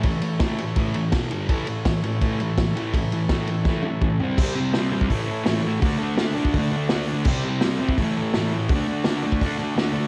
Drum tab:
CC |----------------|----------------|----------------|x---------------|
RD |x-x-x-x-x-x-x-x-|x-x-x-x-x-x-x-x-|x-x-x-x---------|----------------|
HH |----------------|----------------|----------------|----o---o---o---|
SD |----o-------o---|----o-------o---|----o---o-------|----o-------o---|
T1 |----------------|----------------|----------o-----|----------------|
T2 |----------------|----------------|------------o---|----------------|
FT |----------------|----------------|--------------o-|----------------|
BD |o---o---o---o---|o---o---o---o---|o---o---o---o---|o------oo-------|

CC |----------------|x---------------|----------------|
RD |----------------|----------------|----------------|
HH |o---o---o---o---|----o---o---o---|o---o---o---o---|
SD |----o-------o---|----o-------o---|----o-------o---|
T1 |----------------|----------------|----------------|
T2 |----------------|----------------|----------------|
FT |----------------|----------------|----------------|
BD |o------oo-------|o------oo-------|o------oo-------|